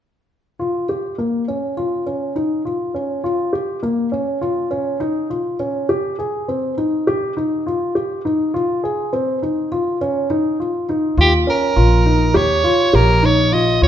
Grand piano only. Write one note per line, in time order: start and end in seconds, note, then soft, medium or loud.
0.59 0.85 F4 medium
0.89 1.15 G4 soft
1.18 1.44 A#3 soft
1.48 1.74 C#4 soft
1.77 2.03 F4 medium
2.06 2.32 C#4 medium
2.36 2.61 D#4 medium
2.65 2.91 F4 soft
2.94 3.20 C#4 soft
3.24 3.50 F4 medium
3.53 3.79 G4 soft
3.83 4.09 A#3 medium
4.12 4.38 C#4 medium
4.41 4.67 F4 medium
4.71 4.97 C#4 medium
5.00 5.26 D#4 medium
5.30 5.56 F4 soft
5.59 5.85 C#4 medium
5.89 6.15 G4 medium
6.19 6.44 G#4 soft
6.48 6.74 C4 medium
6.78 7.03 D#4 medium
7.07 7.33 G4 medium
7.37 7.62 D#4 medium
7.66 7.92 F4 medium
7.95 8.21 G4 medium
8.25 8.50 D#4 medium
8.54 8.80 F4 medium
8.84 9.09 G#4 medium
9.13 9.38 C4 medium
9.42 9.68 D#4 medium
9.72 9.97 F4 medium
10.01 10.27 C#4 medium
10.30 10.56 D#4 medium
10.60 10.85 F4 medium
10.89 11.15 D#4 medium
11.18 11.44 F4 medium
11.47 11.73 C#4 medium
11.76 12.02 F4 medium
12.06 12.31 D#4 medium
12.34 12.60 G4 medium
12.64 12.90 F4 medium
12.93 13.19 G4 medium
13.23 13.49 D#4 medium
13.52 13.78 F4 medium
13.82 13.88 F4 medium